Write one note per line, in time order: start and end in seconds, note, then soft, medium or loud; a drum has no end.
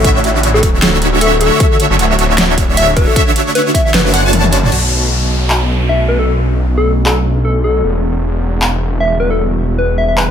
0.00 0.62 A1 loud
0.00 4.68 D3 medium
0.00 4.68 A3 medium
0.00 4.68 C#5 medium
0.00 4.68 F#5 medium
0.04 1.19 D3 medium
0.04 1.19 D4 medium
0.04 1.19 F#4 medium
0.04 1.19 C#5 medium
0.04 1.19 E5 loud
0.04 kick loud
0.04 closed hi-hat medium
0.24 closed hi-hat medium
0.43 closed hi-hat medium
0.54 0.67 A4 loud
0.63 1.50 D1 loud
0.63 kick medium
0.63 closed hi-hat medium
0.82 0.97 A4 medium
0.82 snare loud
0.82 closed hi-hat medium
1.02 closed hi-hat medium
1.21 1.58 D3 medium
1.21 1.58 D4 medium
1.21 1.58 F#4 medium
1.21 1.36 A4 medium
1.21 1.58 C#5 medium
1.21 1.58 E5 loud
1.21 closed hi-hat medium
1.41 1.80 A4 medium
1.41 closed hi-hat medium
1.60 2.75 D3 medium
1.60 2.75 D4 medium
1.60 2.75 F#4 medium
1.60 2.75 C#5 medium
1.60 2.75 E5 loud
1.60 kick loud
1.60 closed hi-hat medium
1.80 closed hi-hat medium
1.90 1.99 F#1 loud
1.99 2.17 D1 medium
1.99 closed hi-hat medium
2.19 3.06 D1 loud
2.19 closed hi-hat medium
2.38 snare loud
2.38 closed hi-hat medium
2.58 kick medium
2.58 closed hi-hat medium
2.77 3.14 D3 medium
2.77 3.14 D4 medium
2.77 3.14 F#4 medium
2.77 3.14 C#5 medium
2.77 3.14 E5 loud
2.77 2.91 E5 medium
2.77 closed hi-hat medium
2.97 3.05 B4 loud
2.97 kick loud
2.97 closed hi-hat medium
3.07 3.20 A4 medium
3.16 4.12 D3 medium
3.16 4.12 D4 medium
3.16 4.12 F#4 medium
3.16 4.12 C#5 medium
3.16 4.12 E5 loud
3.16 kick loud
3.16 closed hi-hat medium
3.36 closed hi-hat medium
3.55 3.69 B4 medium
3.55 closed hi-hat medium
3.74 3.82 E5 medium
3.74 kick medium
3.74 closed hi-hat medium
3.85 3.91 E5 medium
3.94 4.51 F#1 medium
3.94 4.01 B4 medium
3.94 snare loud
3.94 closed hi-hat medium
4.05 4.11 B4 medium
4.13 4.22 D3 medium
4.13 4.22 D4 medium
4.13 4.22 F#4 medium
4.13 4.22 C#5 medium
4.13 4.22 F#5 medium
4.13 closed hi-hat medium
4.24 4.70 D3 loud
4.24 4.70 D4 medium
4.24 4.70 F#4 medium
4.24 4.70 C#5 medium
4.24 4.70 A5 loud
4.33 closed hi-hat medium
4.33 high tom medium
4.44 high tom medium
4.53 4.71 F#1 loud
4.53 closed hi-hat medium
4.63 mid tom medium
4.72 7.82 B1 medium
4.72 7.81 A3 medium
4.72 7.81 B3 medium
4.72 7.81 C#4 medium
4.72 7.81 D4 medium
4.72 crash medium
4.72 downlifter medium
5.50 clap medium
5.89 6.03 E5 medium
6.08 6.17 B4 medium
6.19 6.32 A4 medium
6.77 6.91 A4 medium
7.06 7.20 A4 medium
7.06 clap medium
7.45 7.59 A4 medium
7.64 7.88 A4 medium
7.84 10.31 E1 medium
7.84 10.31 D3 medium
7.84 10.31 G3 medium
7.84 10.31 E4 medium
7.84 10.31 F#4 medium
8.62 clap medium
9.00 9.15 E5 medium
9.20 9.29 B4 medium
9.30 9.44 A4 medium
9.78 9.93 B4 medium
9.98 10.05 E5 medium
10.08 10.14 E5 medium
10.17 10.24 B4 medium
10.17 clap medium